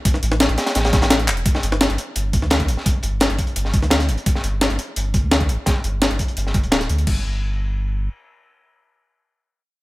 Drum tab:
CC |----------------|----------------|----------------|----------------|
HH |x-x-xxxxxxxxxxxx|x-x-xxx-x-x-xxx-|x-x-xxxxx-xxxxxx|x-x-xxx-x-x-xxx-|
CP |--------------x-|----------------|----------------|----------------|
SD |-o-oo-ooooooo---|-o-oo------oo--o|----o----o-ooo--|-o--o-------o---|
BD |o---------o-----|o---------o--o--|o-----o---o-----|o---------o--o--|

CC |----------------|x---------------|----------------|
HH |x-x-xxxxx-xxxxxx|----------------|----------------|
CP |----------------|----------------|----------------|
SD |o---o----o--oo--|----------------|----------------|
BD |o-----o---o-----|o---------------|----------------|